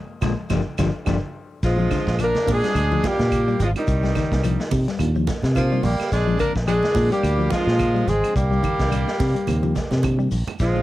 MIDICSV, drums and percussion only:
0, 0, Header, 1, 3, 480
1, 0, Start_track
1, 0, Tempo, 560748
1, 1393, Time_signature, 4, 2, 24, 8
1, 9265, End_track
2, 0, Start_track
2, 0, Title_t, "Shekere"
2, 185, Note_on_c, 9, 82, 87
2, 271, Note_off_c, 9, 82, 0
2, 424, Note_on_c, 9, 82, 90
2, 510, Note_off_c, 9, 82, 0
2, 668, Note_on_c, 9, 82, 99
2, 753, Note_off_c, 9, 82, 0
2, 910, Note_on_c, 9, 82, 85
2, 995, Note_off_c, 9, 82, 0
2, 1395, Note_on_c, 9, 82, 86
2, 1481, Note_off_c, 9, 82, 0
2, 1526, Note_on_c, 9, 82, 29
2, 1612, Note_off_c, 9, 82, 0
2, 1635, Note_on_c, 9, 82, 64
2, 1721, Note_off_c, 9, 82, 0
2, 1768, Note_on_c, 9, 82, 28
2, 1854, Note_off_c, 9, 82, 0
2, 1873, Note_on_c, 9, 82, 94
2, 1959, Note_off_c, 9, 82, 0
2, 2011, Note_on_c, 9, 82, 32
2, 2096, Note_off_c, 9, 82, 0
2, 2119, Note_on_c, 9, 82, 74
2, 2205, Note_off_c, 9, 82, 0
2, 2253, Note_on_c, 9, 82, 32
2, 2339, Note_off_c, 9, 82, 0
2, 2357, Note_on_c, 9, 82, 83
2, 2443, Note_off_c, 9, 82, 0
2, 2494, Note_on_c, 9, 82, 28
2, 2579, Note_off_c, 9, 82, 0
2, 2599, Note_on_c, 9, 82, 77
2, 2685, Note_off_c, 9, 82, 0
2, 2734, Note_on_c, 9, 82, 32
2, 2820, Note_off_c, 9, 82, 0
2, 2841, Note_on_c, 9, 82, 77
2, 2926, Note_off_c, 9, 82, 0
2, 2977, Note_on_c, 9, 82, 27
2, 3063, Note_off_c, 9, 82, 0
2, 3081, Note_on_c, 9, 82, 66
2, 3167, Note_off_c, 9, 82, 0
2, 3213, Note_on_c, 9, 82, 31
2, 3299, Note_off_c, 9, 82, 0
2, 3314, Note_on_c, 9, 82, 93
2, 3400, Note_off_c, 9, 82, 0
2, 3450, Note_on_c, 9, 82, 30
2, 3535, Note_off_c, 9, 82, 0
2, 3558, Note_on_c, 9, 82, 75
2, 3644, Note_off_c, 9, 82, 0
2, 3695, Note_on_c, 9, 82, 28
2, 3781, Note_off_c, 9, 82, 0
2, 3801, Note_on_c, 9, 82, 97
2, 3886, Note_off_c, 9, 82, 0
2, 3934, Note_on_c, 9, 82, 30
2, 4019, Note_off_c, 9, 82, 0
2, 4039, Note_on_c, 9, 82, 76
2, 4125, Note_off_c, 9, 82, 0
2, 4179, Note_on_c, 9, 82, 27
2, 4264, Note_off_c, 9, 82, 0
2, 4277, Note_on_c, 9, 82, 87
2, 4363, Note_off_c, 9, 82, 0
2, 4411, Note_on_c, 9, 82, 27
2, 4497, Note_off_c, 9, 82, 0
2, 4522, Note_on_c, 9, 82, 81
2, 4608, Note_off_c, 9, 82, 0
2, 4655, Note_on_c, 9, 82, 29
2, 4741, Note_off_c, 9, 82, 0
2, 4760, Note_on_c, 9, 82, 86
2, 4845, Note_off_c, 9, 82, 0
2, 4893, Note_on_c, 9, 82, 29
2, 4978, Note_off_c, 9, 82, 0
2, 4995, Note_on_c, 9, 82, 65
2, 5080, Note_off_c, 9, 82, 0
2, 5132, Note_on_c, 9, 82, 30
2, 5217, Note_off_c, 9, 82, 0
2, 5239, Note_on_c, 9, 82, 95
2, 5325, Note_off_c, 9, 82, 0
2, 5370, Note_on_c, 9, 82, 29
2, 5456, Note_off_c, 9, 82, 0
2, 5473, Note_on_c, 9, 82, 69
2, 5558, Note_off_c, 9, 82, 0
2, 5609, Note_on_c, 9, 82, 28
2, 5694, Note_off_c, 9, 82, 0
2, 5715, Note_on_c, 9, 82, 93
2, 5801, Note_off_c, 9, 82, 0
2, 5849, Note_on_c, 9, 82, 33
2, 5934, Note_off_c, 9, 82, 0
2, 5957, Note_on_c, 9, 82, 69
2, 6043, Note_off_c, 9, 82, 0
2, 6095, Note_on_c, 9, 82, 30
2, 6180, Note_off_c, 9, 82, 0
2, 6200, Note_on_c, 9, 82, 77
2, 6285, Note_off_c, 9, 82, 0
2, 6337, Note_on_c, 9, 82, 29
2, 6423, Note_off_c, 9, 82, 0
2, 6437, Note_on_c, 9, 82, 75
2, 6523, Note_off_c, 9, 82, 0
2, 6577, Note_on_c, 9, 82, 33
2, 6662, Note_off_c, 9, 82, 0
2, 6680, Note_on_c, 9, 82, 87
2, 6765, Note_off_c, 9, 82, 0
2, 6813, Note_on_c, 9, 82, 28
2, 6899, Note_off_c, 9, 82, 0
2, 6916, Note_on_c, 9, 82, 59
2, 7002, Note_off_c, 9, 82, 0
2, 7056, Note_on_c, 9, 82, 31
2, 7142, Note_off_c, 9, 82, 0
2, 7160, Note_on_c, 9, 82, 97
2, 7245, Note_off_c, 9, 82, 0
2, 7294, Note_on_c, 9, 82, 29
2, 7380, Note_off_c, 9, 82, 0
2, 7389, Note_on_c, 9, 82, 73
2, 7475, Note_off_c, 9, 82, 0
2, 7527, Note_on_c, 9, 82, 26
2, 7613, Note_off_c, 9, 82, 0
2, 7636, Note_on_c, 9, 82, 93
2, 7722, Note_off_c, 9, 82, 0
2, 7768, Note_on_c, 9, 82, 28
2, 7854, Note_off_c, 9, 82, 0
2, 7873, Note_on_c, 9, 82, 73
2, 7958, Note_off_c, 9, 82, 0
2, 8009, Note_on_c, 9, 82, 27
2, 8095, Note_off_c, 9, 82, 0
2, 8109, Note_on_c, 9, 82, 83
2, 8195, Note_off_c, 9, 82, 0
2, 8245, Note_on_c, 9, 82, 28
2, 8331, Note_off_c, 9, 82, 0
2, 8352, Note_on_c, 9, 82, 70
2, 8438, Note_off_c, 9, 82, 0
2, 8487, Note_on_c, 9, 82, 31
2, 8573, Note_off_c, 9, 82, 0
2, 8587, Note_on_c, 9, 82, 82
2, 8672, Note_off_c, 9, 82, 0
2, 8724, Note_on_c, 9, 82, 31
2, 8810, Note_off_c, 9, 82, 0
2, 8826, Note_on_c, 9, 82, 62
2, 8911, Note_off_c, 9, 82, 0
2, 8963, Note_on_c, 9, 82, 30
2, 9049, Note_off_c, 9, 82, 0
2, 9065, Note_on_c, 9, 82, 87
2, 9151, Note_off_c, 9, 82, 0
2, 9205, Note_on_c, 9, 82, 27
2, 9265, Note_off_c, 9, 82, 0
2, 9265, End_track
3, 0, Start_track
3, 0, Title_t, "Drums"
3, 188, Note_on_c, 9, 75, 89
3, 189, Note_on_c, 9, 38, 69
3, 190, Note_on_c, 9, 36, 79
3, 190, Note_on_c, 9, 63, 90
3, 273, Note_off_c, 9, 75, 0
3, 275, Note_off_c, 9, 38, 0
3, 275, Note_off_c, 9, 63, 0
3, 276, Note_off_c, 9, 36, 0
3, 427, Note_on_c, 9, 63, 100
3, 427, Note_on_c, 9, 75, 80
3, 433, Note_on_c, 9, 36, 79
3, 434, Note_on_c, 9, 38, 76
3, 513, Note_off_c, 9, 63, 0
3, 513, Note_off_c, 9, 75, 0
3, 518, Note_off_c, 9, 36, 0
3, 519, Note_off_c, 9, 38, 0
3, 668, Note_on_c, 9, 75, 86
3, 672, Note_on_c, 9, 38, 73
3, 674, Note_on_c, 9, 36, 68
3, 677, Note_on_c, 9, 63, 94
3, 754, Note_off_c, 9, 75, 0
3, 758, Note_off_c, 9, 38, 0
3, 759, Note_off_c, 9, 36, 0
3, 762, Note_off_c, 9, 63, 0
3, 909, Note_on_c, 9, 75, 89
3, 914, Note_on_c, 9, 36, 77
3, 915, Note_on_c, 9, 38, 82
3, 918, Note_on_c, 9, 63, 88
3, 994, Note_off_c, 9, 75, 0
3, 1000, Note_off_c, 9, 36, 0
3, 1001, Note_off_c, 9, 38, 0
3, 1003, Note_off_c, 9, 63, 0
3, 1393, Note_on_c, 9, 42, 65
3, 1394, Note_on_c, 9, 38, 30
3, 1396, Note_on_c, 9, 36, 85
3, 1478, Note_off_c, 9, 42, 0
3, 1479, Note_off_c, 9, 38, 0
3, 1482, Note_off_c, 9, 36, 0
3, 1633, Note_on_c, 9, 75, 69
3, 1634, Note_on_c, 9, 42, 48
3, 1635, Note_on_c, 9, 38, 26
3, 1637, Note_on_c, 9, 36, 59
3, 1637, Note_on_c, 9, 63, 84
3, 1719, Note_off_c, 9, 75, 0
3, 1720, Note_off_c, 9, 42, 0
3, 1721, Note_off_c, 9, 38, 0
3, 1722, Note_off_c, 9, 36, 0
3, 1723, Note_off_c, 9, 63, 0
3, 1772, Note_on_c, 9, 36, 68
3, 1775, Note_on_c, 9, 38, 71
3, 1858, Note_off_c, 9, 36, 0
3, 1860, Note_off_c, 9, 38, 0
3, 1873, Note_on_c, 9, 75, 70
3, 1879, Note_on_c, 9, 42, 67
3, 1959, Note_off_c, 9, 75, 0
3, 1964, Note_off_c, 9, 42, 0
3, 2012, Note_on_c, 9, 63, 70
3, 2015, Note_on_c, 9, 38, 65
3, 2097, Note_off_c, 9, 63, 0
3, 2100, Note_off_c, 9, 38, 0
3, 2117, Note_on_c, 9, 46, 65
3, 2119, Note_on_c, 9, 36, 69
3, 2125, Note_on_c, 9, 63, 90
3, 2125, Note_on_c, 9, 64, 85
3, 2203, Note_off_c, 9, 46, 0
3, 2205, Note_off_c, 9, 36, 0
3, 2211, Note_off_c, 9, 63, 0
3, 2211, Note_off_c, 9, 64, 0
3, 2258, Note_on_c, 9, 38, 30
3, 2258, Note_on_c, 9, 42, 53
3, 2343, Note_off_c, 9, 42, 0
3, 2344, Note_off_c, 9, 38, 0
3, 2355, Note_on_c, 9, 75, 58
3, 2360, Note_on_c, 9, 42, 69
3, 2440, Note_off_c, 9, 75, 0
3, 2446, Note_off_c, 9, 42, 0
3, 2498, Note_on_c, 9, 63, 71
3, 2584, Note_off_c, 9, 63, 0
3, 2600, Note_on_c, 9, 36, 68
3, 2601, Note_on_c, 9, 42, 52
3, 2601, Note_on_c, 9, 63, 96
3, 2602, Note_on_c, 9, 38, 73
3, 2685, Note_off_c, 9, 36, 0
3, 2686, Note_off_c, 9, 63, 0
3, 2687, Note_off_c, 9, 42, 0
3, 2688, Note_off_c, 9, 38, 0
3, 2735, Note_on_c, 9, 63, 70
3, 2736, Note_on_c, 9, 38, 66
3, 2820, Note_off_c, 9, 63, 0
3, 2822, Note_off_c, 9, 38, 0
3, 2838, Note_on_c, 9, 42, 77
3, 2840, Note_on_c, 9, 36, 81
3, 2842, Note_on_c, 9, 63, 78
3, 2842, Note_on_c, 9, 75, 74
3, 2924, Note_off_c, 9, 42, 0
3, 2926, Note_off_c, 9, 36, 0
3, 2927, Note_off_c, 9, 75, 0
3, 2928, Note_off_c, 9, 63, 0
3, 3082, Note_on_c, 9, 42, 56
3, 3082, Note_on_c, 9, 63, 65
3, 3082, Note_on_c, 9, 64, 76
3, 3167, Note_off_c, 9, 42, 0
3, 3167, Note_off_c, 9, 63, 0
3, 3167, Note_off_c, 9, 64, 0
3, 3216, Note_on_c, 9, 42, 53
3, 3217, Note_on_c, 9, 75, 64
3, 3302, Note_off_c, 9, 42, 0
3, 3303, Note_off_c, 9, 75, 0
3, 3321, Note_on_c, 9, 36, 89
3, 3322, Note_on_c, 9, 42, 71
3, 3406, Note_off_c, 9, 36, 0
3, 3408, Note_off_c, 9, 42, 0
3, 3459, Note_on_c, 9, 38, 26
3, 3545, Note_off_c, 9, 38, 0
3, 3555, Note_on_c, 9, 75, 65
3, 3557, Note_on_c, 9, 63, 87
3, 3561, Note_on_c, 9, 36, 60
3, 3563, Note_on_c, 9, 38, 25
3, 3563, Note_on_c, 9, 42, 47
3, 3641, Note_off_c, 9, 75, 0
3, 3642, Note_off_c, 9, 63, 0
3, 3647, Note_off_c, 9, 36, 0
3, 3648, Note_off_c, 9, 42, 0
3, 3649, Note_off_c, 9, 38, 0
3, 3695, Note_on_c, 9, 36, 70
3, 3701, Note_on_c, 9, 42, 56
3, 3702, Note_on_c, 9, 38, 74
3, 3781, Note_off_c, 9, 36, 0
3, 3786, Note_off_c, 9, 42, 0
3, 3787, Note_off_c, 9, 38, 0
3, 3797, Note_on_c, 9, 75, 62
3, 3803, Note_on_c, 9, 42, 72
3, 3882, Note_off_c, 9, 75, 0
3, 3888, Note_off_c, 9, 42, 0
3, 3935, Note_on_c, 9, 38, 63
3, 4021, Note_off_c, 9, 38, 0
3, 4034, Note_on_c, 9, 63, 88
3, 4034, Note_on_c, 9, 64, 85
3, 4040, Note_on_c, 9, 36, 80
3, 4040, Note_on_c, 9, 46, 63
3, 4119, Note_off_c, 9, 63, 0
3, 4119, Note_off_c, 9, 64, 0
3, 4125, Note_off_c, 9, 46, 0
3, 4126, Note_off_c, 9, 36, 0
3, 4177, Note_on_c, 9, 42, 52
3, 4178, Note_on_c, 9, 38, 32
3, 4262, Note_off_c, 9, 42, 0
3, 4263, Note_off_c, 9, 38, 0
3, 4269, Note_on_c, 9, 64, 74
3, 4273, Note_on_c, 9, 75, 61
3, 4280, Note_on_c, 9, 42, 72
3, 4354, Note_off_c, 9, 64, 0
3, 4359, Note_off_c, 9, 75, 0
3, 4365, Note_off_c, 9, 42, 0
3, 4512, Note_on_c, 9, 63, 100
3, 4512, Note_on_c, 9, 64, 71
3, 4520, Note_on_c, 9, 36, 61
3, 4522, Note_on_c, 9, 42, 56
3, 4523, Note_on_c, 9, 38, 68
3, 4598, Note_off_c, 9, 63, 0
3, 4598, Note_off_c, 9, 64, 0
3, 4605, Note_off_c, 9, 36, 0
3, 4607, Note_off_c, 9, 42, 0
3, 4608, Note_off_c, 9, 38, 0
3, 4644, Note_on_c, 9, 63, 63
3, 4654, Note_on_c, 9, 42, 53
3, 4655, Note_on_c, 9, 38, 68
3, 4730, Note_off_c, 9, 63, 0
3, 4740, Note_off_c, 9, 38, 0
3, 4740, Note_off_c, 9, 42, 0
3, 4752, Note_on_c, 9, 63, 71
3, 4759, Note_on_c, 9, 75, 67
3, 4760, Note_on_c, 9, 36, 72
3, 4765, Note_on_c, 9, 42, 70
3, 4838, Note_off_c, 9, 63, 0
3, 4845, Note_off_c, 9, 75, 0
3, 4846, Note_off_c, 9, 36, 0
3, 4850, Note_off_c, 9, 42, 0
3, 4993, Note_on_c, 9, 63, 75
3, 4993, Note_on_c, 9, 64, 84
3, 5003, Note_on_c, 9, 46, 64
3, 5079, Note_off_c, 9, 63, 0
3, 5079, Note_off_c, 9, 64, 0
3, 5088, Note_off_c, 9, 46, 0
3, 5134, Note_on_c, 9, 75, 57
3, 5141, Note_on_c, 9, 42, 52
3, 5142, Note_on_c, 9, 38, 29
3, 5220, Note_off_c, 9, 75, 0
3, 5227, Note_off_c, 9, 42, 0
3, 5228, Note_off_c, 9, 38, 0
3, 5239, Note_on_c, 9, 36, 83
3, 5241, Note_on_c, 9, 42, 65
3, 5242, Note_on_c, 9, 38, 29
3, 5325, Note_off_c, 9, 36, 0
3, 5326, Note_off_c, 9, 42, 0
3, 5327, Note_off_c, 9, 38, 0
3, 5473, Note_on_c, 9, 63, 77
3, 5479, Note_on_c, 9, 36, 62
3, 5479, Note_on_c, 9, 75, 69
3, 5481, Note_on_c, 9, 42, 50
3, 5558, Note_off_c, 9, 63, 0
3, 5564, Note_off_c, 9, 36, 0
3, 5565, Note_off_c, 9, 75, 0
3, 5567, Note_off_c, 9, 42, 0
3, 5612, Note_on_c, 9, 36, 71
3, 5616, Note_on_c, 9, 38, 69
3, 5698, Note_off_c, 9, 36, 0
3, 5702, Note_off_c, 9, 38, 0
3, 5716, Note_on_c, 9, 75, 68
3, 5718, Note_on_c, 9, 42, 66
3, 5802, Note_off_c, 9, 75, 0
3, 5804, Note_off_c, 9, 42, 0
3, 5843, Note_on_c, 9, 63, 67
3, 5855, Note_on_c, 9, 38, 64
3, 5928, Note_off_c, 9, 63, 0
3, 5940, Note_off_c, 9, 38, 0
3, 5947, Note_on_c, 9, 63, 89
3, 5947, Note_on_c, 9, 64, 80
3, 5957, Note_on_c, 9, 36, 75
3, 5958, Note_on_c, 9, 46, 69
3, 6032, Note_off_c, 9, 63, 0
3, 6032, Note_off_c, 9, 64, 0
3, 6043, Note_off_c, 9, 36, 0
3, 6044, Note_off_c, 9, 46, 0
3, 6093, Note_on_c, 9, 42, 51
3, 6179, Note_off_c, 9, 42, 0
3, 6193, Note_on_c, 9, 75, 62
3, 6200, Note_on_c, 9, 42, 73
3, 6278, Note_off_c, 9, 75, 0
3, 6285, Note_off_c, 9, 42, 0
3, 6425, Note_on_c, 9, 63, 97
3, 6438, Note_on_c, 9, 36, 69
3, 6442, Note_on_c, 9, 42, 54
3, 6443, Note_on_c, 9, 38, 73
3, 6510, Note_off_c, 9, 63, 0
3, 6523, Note_off_c, 9, 36, 0
3, 6527, Note_off_c, 9, 42, 0
3, 6528, Note_off_c, 9, 38, 0
3, 6574, Note_on_c, 9, 38, 82
3, 6660, Note_off_c, 9, 38, 0
3, 6669, Note_on_c, 9, 63, 77
3, 6673, Note_on_c, 9, 75, 74
3, 6677, Note_on_c, 9, 36, 79
3, 6680, Note_on_c, 9, 42, 64
3, 6755, Note_off_c, 9, 63, 0
3, 6758, Note_off_c, 9, 75, 0
3, 6762, Note_off_c, 9, 36, 0
3, 6765, Note_off_c, 9, 42, 0
3, 6914, Note_on_c, 9, 63, 70
3, 6914, Note_on_c, 9, 64, 78
3, 6920, Note_on_c, 9, 42, 56
3, 7000, Note_off_c, 9, 63, 0
3, 7000, Note_off_c, 9, 64, 0
3, 7005, Note_off_c, 9, 42, 0
3, 7053, Note_on_c, 9, 75, 65
3, 7056, Note_on_c, 9, 42, 48
3, 7138, Note_off_c, 9, 75, 0
3, 7141, Note_off_c, 9, 42, 0
3, 7155, Note_on_c, 9, 36, 83
3, 7157, Note_on_c, 9, 42, 69
3, 7241, Note_off_c, 9, 36, 0
3, 7243, Note_off_c, 9, 42, 0
3, 7394, Note_on_c, 9, 63, 80
3, 7396, Note_on_c, 9, 36, 64
3, 7397, Note_on_c, 9, 42, 47
3, 7402, Note_on_c, 9, 75, 65
3, 7480, Note_off_c, 9, 63, 0
3, 7482, Note_off_c, 9, 36, 0
3, 7482, Note_off_c, 9, 42, 0
3, 7487, Note_off_c, 9, 75, 0
3, 7529, Note_on_c, 9, 36, 62
3, 7530, Note_on_c, 9, 42, 57
3, 7531, Note_on_c, 9, 38, 69
3, 7615, Note_off_c, 9, 36, 0
3, 7616, Note_off_c, 9, 42, 0
3, 7617, Note_off_c, 9, 38, 0
3, 7635, Note_on_c, 9, 75, 70
3, 7638, Note_on_c, 9, 42, 72
3, 7721, Note_off_c, 9, 75, 0
3, 7723, Note_off_c, 9, 42, 0
3, 7771, Note_on_c, 9, 38, 55
3, 7857, Note_off_c, 9, 38, 0
3, 7875, Note_on_c, 9, 36, 78
3, 7876, Note_on_c, 9, 63, 88
3, 7876, Note_on_c, 9, 64, 73
3, 7878, Note_on_c, 9, 46, 64
3, 7879, Note_on_c, 9, 38, 32
3, 7961, Note_off_c, 9, 36, 0
3, 7962, Note_off_c, 9, 63, 0
3, 7962, Note_off_c, 9, 64, 0
3, 7964, Note_off_c, 9, 38, 0
3, 7964, Note_off_c, 9, 46, 0
3, 8013, Note_on_c, 9, 42, 60
3, 8099, Note_off_c, 9, 42, 0
3, 8109, Note_on_c, 9, 63, 94
3, 8115, Note_on_c, 9, 75, 68
3, 8118, Note_on_c, 9, 42, 73
3, 8194, Note_off_c, 9, 63, 0
3, 8200, Note_off_c, 9, 75, 0
3, 8204, Note_off_c, 9, 42, 0
3, 8244, Note_on_c, 9, 63, 76
3, 8330, Note_off_c, 9, 63, 0
3, 8351, Note_on_c, 9, 63, 91
3, 8354, Note_on_c, 9, 42, 55
3, 8355, Note_on_c, 9, 36, 62
3, 8355, Note_on_c, 9, 38, 71
3, 8436, Note_off_c, 9, 63, 0
3, 8440, Note_off_c, 9, 36, 0
3, 8440, Note_off_c, 9, 42, 0
3, 8441, Note_off_c, 9, 38, 0
3, 8482, Note_on_c, 9, 64, 81
3, 8489, Note_on_c, 9, 42, 53
3, 8490, Note_on_c, 9, 38, 75
3, 8568, Note_off_c, 9, 64, 0
3, 8575, Note_off_c, 9, 42, 0
3, 8576, Note_off_c, 9, 38, 0
3, 8587, Note_on_c, 9, 64, 81
3, 8593, Note_on_c, 9, 42, 73
3, 8594, Note_on_c, 9, 36, 72
3, 8599, Note_on_c, 9, 75, 69
3, 8673, Note_off_c, 9, 64, 0
3, 8678, Note_off_c, 9, 42, 0
3, 8679, Note_off_c, 9, 36, 0
3, 8684, Note_off_c, 9, 75, 0
3, 8829, Note_on_c, 9, 46, 64
3, 8914, Note_off_c, 9, 46, 0
3, 8964, Note_on_c, 9, 42, 50
3, 8965, Note_on_c, 9, 64, 71
3, 8973, Note_on_c, 9, 75, 63
3, 9050, Note_off_c, 9, 42, 0
3, 9051, Note_off_c, 9, 64, 0
3, 9058, Note_off_c, 9, 75, 0
3, 9070, Note_on_c, 9, 42, 68
3, 9071, Note_on_c, 9, 38, 28
3, 9073, Note_on_c, 9, 36, 84
3, 9156, Note_off_c, 9, 38, 0
3, 9156, Note_off_c, 9, 42, 0
3, 9158, Note_off_c, 9, 36, 0
3, 9265, End_track
0, 0, End_of_file